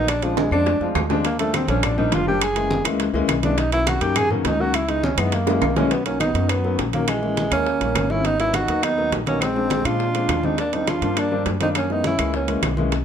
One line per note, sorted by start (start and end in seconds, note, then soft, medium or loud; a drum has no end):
0.00 0.46 A#1 medium
0.00 0.10 D#4 loud
0.08 0.25 D4 medium
0.08 high bongo medium
0.08 high conga soft
0.08 high timbale loud
0.08 claves medium
0.22 0.43 F3 medium
0.22 0.39 F3 medium
0.22 0.43 G#3 medium
0.22 0.44 C4 medium
0.22 0.44 D4 medium
0.22 high bongo soft
0.22 high conga soft
0.22 high timbale medium
0.37 0.51 G#3 medium
0.37 high bongo medium
0.37 high conga medium
0.37 high timbale loud
0.51 0.79 F2 medium
0.51 0.72 F3 medium
0.51 0.72 G#3 medium
0.51 0.73 C4 medium
0.51 0.93 D4 medium
0.51 0.73 D4 medium
0.51 high conga soft
0.51 claves medium
0.66 high bongo medium
0.66 high conga soft
0.66 low timbale medium
0.80 0.94 F2 medium
0.80 1.01 F3 medium
0.80 1.01 G#3 medium
0.80 1.02 C4 medium
0.80 1.02 F4 medium
0.80 high bongo soft
0.80 high conga soft
0.95 1.63 D#2 medium
0.95 high bongo medium
0.95 low bongo medium
0.95 high conga medium
0.95 low timbale loud
0.95 claves medium
1.09 1.24 F3 medium
1.09 1.25 G#3 medium
1.09 1.25 C4 medium
1.09 1.25 D4 loud
1.09 high bongo soft
1.09 high conga medium
1.09 low timbale medium
1.25 1.39 A#3 medium
1.25 high bongo medium
1.25 high conga soft
1.25 high timbale medium
1.39 1.59 F3 medium
1.39 1.60 G3 medium
1.39 1.57 A3 medium
1.39 1.60 A#3 medium
1.39 1.60 D4 medium
1.39 high conga soft
1.39 high timbale medium
1.54 1.69 C4 medium
1.54 high bongo medium
1.54 high conga medium
1.54 high timbale medium
1.54 claves medium
1.67 2.09 A#1 medium
1.67 1.88 F3 medium
1.67 1.89 G3 medium
1.67 1.89 A#3 medium
1.67 1.86 C#4 medium
1.67 1.89 D4 medium
1.67 high timbale medium
1.83 1.98 D4 medium
1.83 high bongo medium
1.83 high conga soft
1.83 low conga medium
1.83 high timbale loud
1.83 claves medium
1.97 2.18 F3 medium
1.97 2.18 G3 medium
1.97 2.18 A#3 medium
1.97 2.18 D4 medium
1.97 2.15 D#4 medium
1.97 high conga soft
1.97 low conga medium
2.12 2.79 F#1 medium
2.12 2.27 F4 medium
2.12 high bongo medium
2.12 low bongo medium
2.12 high conga medium
2.12 high timbale medium
2.12 low timbale medium
2.26 2.41 F3 medium
2.26 2.41 G3 medium
2.26 2.42 A#3 medium
2.26 2.42 D4 medium
2.26 2.45 G4 medium
2.26 high conga soft
2.41 2.86 G#4 medium
2.41 high bongo medium
2.41 high conga soft
2.41 high timbale medium
2.41 claves medium
2.56 2.76 E3 medium
2.56 2.76 G#3 medium
2.56 2.77 A#3 medium
2.56 2.77 C#4 medium
2.56 high bongo soft
2.56 high conga soft
2.56 high timbale medium
2.71 high bongo medium
2.71 high conga loud
2.84 3.12 C#2 medium
2.84 3.05 E3 medium
2.84 3.05 G#3 medium
2.84 3.06 A#3 medium
2.84 3.06 C#4 loud
2.84 high conga soft
2.84 high timbale loud
2.84 claves medium
3.00 high bongo medium
3.00 high conga soft
3.00 high timbale medium
3.13 3.27 C#2 medium
3.13 3.34 E3 loud
3.13 3.34 G#3 medium
3.13 3.35 A#3 loud
3.13 3.35 C#4 loud
3.13 high bongo soft
3.13 high conga soft
3.28 3.96 B1 medium
3.28 high bongo medium
3.28 low bongo medium
3.28 high conga medium
3.28 high timbale loud
3.28 claves medium
3.43 3.57 E3 medium
3.43 3.58 G#3 medium
3.43 3.58 A#3 medium
3.43 3.58 C#4 medium
3.43 3.60 D4 medium
3.43 high bongo soft
3.43 high conga medium
3.43 high timbale medium
3.58 3.72 D#4 medium
3.58 high bongo medium
3.58 high conga soft
3.58 high timbale medium
3.72 3.92 D#3 medium
3.72 3.93 F#3 medium
3.72 3.93 A#3 medium
3.72 3.93 C#4 medium
3.72 3.89 E4 loud
3.72 high conga soft
3.72 high timbale medium
3.87 4.03 F#4 medium
3.87 high bongo medium
3.87 high conga loud
3.87 high timbale loud
3.87 claves medium
4.01 4.42 F#2 medium
4.01 4.21 D#3 medium
4.01 4.22 F#3 medium
4.01 4.22 A#3 medium
4.01 4.22 C#4 medium
4.01 4.19 G4 medium
4.01 high timbale medium
4.16 4.31 G#4 loud
4.16 high bongo medium
4.16 high conga soft
4.16 low conga medium
4.16 high timbale loud
4.16 claves medium
4.30 4.51 D#3 medium
4.30 4.51 F#3 medium
4.30 4.51 A#3 medium
4.30 4.48 B3 medium
4.30 4.52 C#4 loud
4.30 high conga soft
4.30 low conga medium
4.44 5.12 C#2 medium
4.44 4.62 D#4 loud
4.44 high bongo medium
4.44 low bongo medium
4.44 high conga medium
4.44 high timbale medium
4.44 low timbale medium
4.59 4.74 D#3 medium
4.59 4.74 F#3 medium
4.59 4.75 A#3 medium
4.59 4.75 C#4 loud
4.59 4.76 F#4 loud
4.59 high conga soft
4.74 4.90 E4 medium
4.74 high bongo medium
4.74 high conga soft
4.74 high timbale medium
4.74 claves medium
4.88 5.09 E3 medium
4.88 5.09 G#3 medium
4.88 5.10 B3 medium
4.88 5.06 D#4 loud
4.88 5.10 D#4 medium
4.88 high bongo soft
4.88 high conga soft
4.88 high timbale medium
5.04 5.20 C#4 medium
5.04 high bongo medium
5.04 high conga loud
5.17 5.58 F#2 loud
5.17 5.32 E3 medium
5.17 5.33 G#3 medium
5.17 5.33 B3 medium
5.17 5.36 B3 medium
5.17 5.33 D#4 medium
5.17 high conga soft
5.17 high timbale loud
5.17 claves medium
5.32 5.76 A#3 medium
5.32 high bongo medium
5.32 high conga soft
5.32 high timbale medium
5.46 5.67 E3 medium
5.46 5.67 G#3 medium
5.46 5.68 A#3 medium
5.46 5.68 C#4 loud
5.46 high bongo medium
5.46 high conga soft
5.46 high timbale medium
5.61 6.29 B1 medium
5.61 high conga medium
5.61 high timbale loud
5.61 claves medium
5.76 5.91 E3 loud
5.76 5.91 G#3 medium
5.76 5.93 A#3 medium
5.76 5.91 A#3 loud
5.76 5.94 C#4 medium
5.76 5.92 C#4 loud
5.76 low bongo medium
5.76 high conga medium
5.76 low timbale medium
5.91 6.05 F#3 medium
5.91 6.05 B3 medium
5.91 high bongo medium
5.91 high conga soft
5.91 high timbale medium
6.05 6.26 D#3 medium
6.05 6.26 F#3 medium
6.05 6.19 A#3 medium
6.05 6.26 A#3 medium
6.05 6.19 C#4 medium
6.05 6.27 C#4 medium
6.05 high bongo soft
6.05 high conga soft
6.05 high timbale medium
6.20 6.51 B3 medium
6.20 6.51 D#4 medium
6.20 high bongo medium
6.20 high conga medium
6.20 high timbale medium
6.20 low timbale medium
6.20 claves medium
6.34 6.75 F#2 medium
6.34 6.55 D#3 medium
6.34 6.55 F#3 medium
6.34 6.56 A#3 medium
6.34 6.56 C#4 medium
6.34 high conga soft
6.34 high timbale medium
6.49 6.79 F#3 medium
6.49 6.79 B3 medium
6.49 high bongo medium
6.49 high conga soft
6.49 high timbale medium
6.49 claves medium
6.64 6.84 D#3 medium
6.64 6.85 F#3 medium
6.64 6.85 A#3 medium
6.64 6.85 C#4 medium
6.64 high bongo soft
6.64 high conga soft
6.78 7.46 A#1 medium
6.78 high bongo medium
6.78 low bongo medium
6.78 high conga soft
6.78 high timbale medium
6.78 low timbale medium
6.93 7.08 D#3 medium
6.93 7.09 F#3 medium
6.93 7.08 F#3 medium
6.93 7.10 A#3 medium
6.93 7.08 A#3 medium
6.93 7.09 C#4 medium
6.93 high bongo soft
6.93 high conga medium
6.93 high timbale medium
7.08 7.51 E3 medium
7.08 7.52 G#3 medium
7.08 high bongo medium
7.08 high conga soft
7.08 high timbale medium
7.08 claves medium
7.22 7.43 E3 medium
7.22 7.43 G#3 medium
7.22 7.43 A#3 medium
7.22 7.43 C#4 medium
7.22 high bongo soft
7.22 high conga soft
7.37 high bongo soft
7.37 high conga medium
7.37 high timbale medium
7.37 low timbale medium
7.51 7.79 D#2 medium
7.51 7.66 E3 medium
7.51 7.66 G#3 medium
7.51 8.12 A#3 medium
7.51 7.67 A#3 medium
7.51 8.12 C#4 medium
7.51 7.67 C#4 medium
7.51 high conga soft
7.51 high timbale medium
7.51 claves medium
7.66 high bongo medium
7.66 high conga soft
7.80 7.94 A#1 medium
7.80 8.01 D#3 medium
7.80 8.01 G3 medium
7.80 8.01 A#3 medium
7.80 8.02 C#4 medium
7.80 high bongo soft
7.80 high conga soft
7.80 high timbale medium
7.95 8.63 G#1 medium
7.95 high bongo medium
7.95 low bongo medium
7.95 high conga medium
7.95 high timbale medium
7.95 low timbale medium
7.95 claves medium
8.09 8.24 D#3 medium
8.09 8.25 G3 medium
8.09 8.25 A#3 medium
8.09 8.26 C#4 medium
8.09 8.25 C#4 medium
8.09 8.27 E4 medium
8.09 high bongo soft
8.09 high conga medium
8.24 8.38 B3 medium
8.24 8.40 D#4 medium
8.24 high bongo medium
8.24 high conga soft
8.24 high timbale medium
8.39 8.60 F#3 medium
8.39 8.60 A#3 medium
8.39 8.60 B3 medium
8.39 8.56 C#4 medium
8.39 8.60 D#4 medium
8.39 8.56 E4 loud
8.39 high bongo soft
8.39 high timbale medium
8.54 8.85 D#4 medium
8.54 8.85 F#4 medium
8.54 high bongo soft
8.54 high conga medium
8.54 high timbale medium
8.54 low timbale medium
8.54 claves medium
8.68 9.09 D#2 medium
8.68 8.89 F#3 medium
8.68 8.89 A#3 medium
8.68 8.89 B3 medium
8.68 8.90 D#4 medium
8.68 high conga soft
8.68 high timbale medium
8.83 9.12 B3 medium
8.83 9.12 D#4 loud
8.83 high bongo medium
8.83 high conga soft
8.83 high timbale medium
8.83 claves medium
8.97 9.18 F#3 medium
8.97 9.18 A#3 medium
8.97 9.18 B3 medium
8.97 9.19 D#4 medium
8.97 high bongo soft
8.97 high conga soft
9.12 9.80 A#1 medium
9.12 high bongo medium
9.12 low bongo medium
9.12 high conga soft
9.12 high timbale medium
9.12 low timbale medium
9.26 9.41 F#3 medium
9.26 9.41 A#3 medium
9.26 9.43 A#3 medium
9.26 9.42 B3 medium
9.26 9.43 C#4 medium
9.26 9.42 D#4 medium
9.26 high bongo soft
9.26 high conga medium
9.26 high timbale medium
9.41 9.87 G#3 medium
9.41 9.87 C4 medium
9.41 high bongo medium
9.41 high conga soft
9.41 high timbale medium
9.41 claves medium
9.55 9.76 F3 medium
9.55 9.77 G#3 medium
9.55 9.77 C4 medium
9.55 9.77 D4 medium
9.55 high bongo soft
9.55 high conga soft
9.70 high bongo medium
9.70 high conga medium
9.70 high timbale medium
9.70 low timbale medium
9.85 10.26 A#2 medium
9.85 10.05 F3 medium
9.85 10.06 G#3 medium
9.85 10.06 C4 medium
9.85 10.45 D4 medium
9.85 10.06 D4 medium
9.85 10.46 F4 medium
9.85 high timbale medium
9.85 claves medium
9.99 high bongo medium
9.99 high conga soft
10.14 10.35 F3 medium
10.14 10.35 G#3 medium
10.14 10.35 C4 medium
10.14 10.35 D4 medium
10.14 high bongo soft
10.14 high conga soft
10.14 high timbale medium
10.28 10.96 D#2 medium
10.28 high bongo medium
10.28 low bongo medium
10.28 high conga medium
10.28 high timbale medium
10.28 low timbale medium
10.28 claves medium
10.43 10.58 F3 medium
10.43 10.58 G#3 medium
10.43 10.58 C4 medium
10.43 10.59 D4 medium
10.43 10.59 D#4 medium
10.43 high bongo soft
10.43 high conga medium
10.58 10.75 A#3 medium
10.58 10.76 D4 medium
10.58 high bongo medium
10.58 high timbale medium
10.72 10.93 F3 medium
10.72 10.93 G3 medium
10.72 10.94 A#3 medium
10.72 10.89 C4 medium
10.72 10.94 D4 medium
10.72 10.91 D#4 medium
10.72 high bongo soft
10.72 high conga soft
10.72 high timbale medium
10.87 11.19 D4 medium
10.87 11.20 F4 medium
10.87 high bongo medium
10.87 high conga medium
10.87 high timbale medium
10.87 low timbale medium
10.87 claves medium
11.02 11.43 G2 medium
11.02 11.22 F3 medium
11.02 11.23 G3 medium
11.02 11.23 A#3 medium
11.02 11.23 D4 medium
11.02 high conga soft
11.02 high timbale medium
11.17 11.46 A#3 medium
11.17 11.47 D4 medium
11.17 high bongo medium
11.17 high conga soft
11.17 high timbale medium
11.17 claves medium
11.31 11.51 F3 medium
11.31 11.52 G3 medium
11.31 11.52 A#3 medium
11.31 11.52 D4 medium
11.31 high bongo soft
11.31 high conga soft
11.46 12.13 F#2 medium
11.46 high bongo medium
11.46 low bongo medium
11.46 high conga soft
11.46 high timbale medium
11.46 low timbale medium
11.60 11.75 F3 medium
11.60 11.75 G3 medium
11.60 11.75 A#3 medium
11.60 11.67 C4 medium
11.60 11.76 D4 medium
11.60 11.69 D#4 medium
11.60 high bongo soft
11.60 high conga medium
11.60 high timbale medium
11.75 11.92 A#3 medium
11.75 11.94 C#4 medium
11.75 high bongo medium
11.75 high conga soft
11.75 high timbale medium
11.75 claves medium
11.89 12.10 E3 medium
11.89 12.10 G#3 medium
11.89 12.11 A#3 medium
11.89 12.05 B3 medium
11.89 12.11 C#4 medium
11.89 12.06 D#4 medium
11.89 high bongo soft
11.89 high conga soft
12.04 12.32 C#4 medium
12.04 12.33 E4 medium
12.04 high bongo medium
12.04 high conga medium
12.04 high timbale medium
12.04 low timbale medium
12.18 12.60 C#2 medium
12.18 12.39 E3 medium
12.18 12.39 G#3 medium
12.18 12.40 A#3 medium
12.18 12.40 C#4 medium
12.18 high conga soft
12.18 high timbale medium
12.18 claves medium
12.33 12.61 A#3 medium
12.33 12.62 C#4 medium
12.33 high bongo medium
12.33 high conga soft
12.47 12.68 E3 medium
12.47 12.69 G#3 medium
12.47 12.69 A#3 medium
12.47 12.69 C#4 medium
12.47 high bongo soft
12.47 high conga soft
12.47 high timbale medium
12.62 13.05 B1 medium
12.62 high bongo medium
12.62 low bongo medium
12.62 high conga medium
12.62 high timbale medium
12.62 low timbale medium
12.62 claves medium
12.77 12.92 E3 medium
12.77 12.92 G#3 medium
12.77 12.92 A#3 medium
12.77 12.93 C#4 loud
12.77 high bongo soft
12.77 high conga medium
12.92 high bongo medium
12.92 high conga soft
12.92 high timbale medium